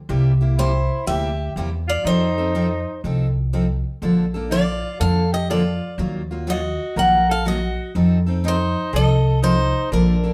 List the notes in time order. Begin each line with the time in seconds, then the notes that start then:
0.09 C2 C3 G3 A#3 E4 G4
0.41 A#3 E4 G4
0.57 C3 G3 A#3 E4 G4 C5
1.07 D2 C3 G3 A#3 E4 G4 E5
1.56 E2 C3 G3 A#3 E4 G4
1.88 F4 D5
2.04 F2 F3 C4 D#4 A4 C5
2.38 C4 D#4 A4
2.55 F3 C4 D#4 A4
3.04 C2 F3 C4 D#4 A4
3.53 F3 C4 D#4 A4
4.02 A#1 D3 F3 A#3 D4 A4
4.34 A#3 D4 A4
4.50 D3 F3 A#3 D4 F4 A4 D5
5.00 F2 D3 F3 A#3 D4 A4 F5
5.32 G4 D#5
5.50 D3 F3 A#3 D4 F4 A4 D5
5.98 D#2 D#3 F#3 A#3 F4
6.31 F#3 A#3 F4
6.47 D#3 F#3 A#3 F4 F#4 D#5
6.96 A#1 D#3 F#3 A#3 F4 A#4 F#5
7.29 A4 F5
7.45 D#3 F#3 A#3 F4 F#4 D#5
7.95 F2 F3 C4 D#4 A4
8.26 C4 D#4 A4
8.44 F3 C4 D#4 A4
8.48 C5
8.93 C2 F3 C4 D#4 A4 D#5
9.42 F3 C4 D#4 A4 C5
9.91 A#1 D3 F3 A#3 D4 A4 A#4
10.24 A#3 D4 A4